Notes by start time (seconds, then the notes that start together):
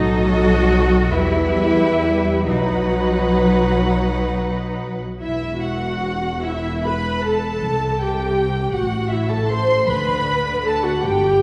Already playing: B1 F#3 D#4 A4 D#5
0.30 F#4
1.12 E2 G3 E4 B4 E5
2.47 B1 F#3 D#4 B4 F#5
5.21 E1 E2 E4 E5
5.63 F#4 F#5
6.43 E4 E5
6.84 B4 B5
7.24 A4 A5
7.62 C2 C3
8.00 G4 G5
8.74 A1 A2 F#4 F#5
9.11 E4 E5
9.31 A4 A5
9.50 C5 C6
9.89 D2 D3 B4 B5
10.66 A4 A5
10.86 F#4 F#5
11.04 G1 G2 G4 G5